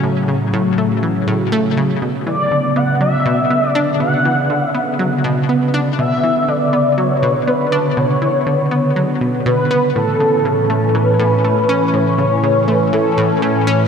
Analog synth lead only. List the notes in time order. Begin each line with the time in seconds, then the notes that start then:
2.27 D5
2.77 F#5
3.01 E5
3.68 D5
4.00 F#5
4.67 E5
5.99 E5
6.48 D5
6.98 C#5
7.48 B4
7.97 C#5
9.46 B4
9.96 A4
10.95 B4
11.94 C#5
12.69 B4
12.94 A4